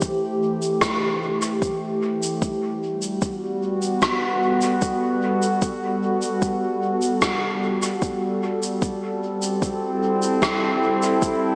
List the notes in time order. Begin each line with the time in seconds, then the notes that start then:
Already playing: E3 A3 G4 C5
0.01 kick, shaker
0.62 shaker
0.81 kick, cross-stick, shaker
1.42 shaker
1.62 kick, shaker
2.23 shaker
2.42 G3, kick, shaker
2.68 F#4
2.93 B3
3.02 shaker
3.22 kick, shaker
3.82 A4, shaker
4.02 kick, cross-stick, shaker
4.61 shaker
4.82 kick, shaker
5.42 shaker
5.62 kick, shaker
6.22 shaker
6.42 kick, shaker
7.02 shaker
7.22 kick, cross-stick, shaker
7.82 shaker
8.02 kick, shaker
8.63 shaker
8.82 kick, shaker
8.94 C4
9.42 shaker
9.57 E4
9.62 kick, shaker
10.22 shaker
10.42 kick, cross-stick, shaker
11.03 shaker
11.22 kick, shaker